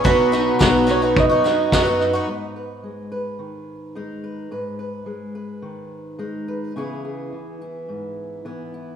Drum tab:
SD |oooooooo|--------|--------|--------|
BD |o-o-o-o-|--------|--------|--------|